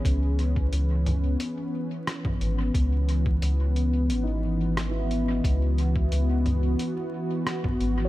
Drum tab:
HH |x-x-x-x-x---x-x-|x-x-x-x-x---x-x-|x-x-x-x-x---x-x-|
SD |------------r---|------------r---|------------r---|
CG |------O------O--|----------------|------O------O--|
BD |o--o---------o--|o--o------------|o--o---------o--|